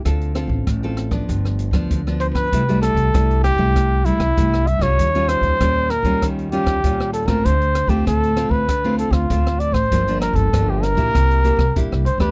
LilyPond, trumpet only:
\new Staff \with { instrumentName = "Trumpet" } { \time 4/4 \key c \major \tempo 4 = 97 r2. r8 c''16 b'16~ | b'8 a'4 g'4 e'4 e''16 des''16~ | des''8 c''4 bes'8 r8 g'4 a'16 bes'16 | c''8. g'16 a'8. b'8. a'16 f'8. d''16 c''16~ |
c''8 bes'16 a'8 g'16 bes'4. r8 c''16 b'16 | }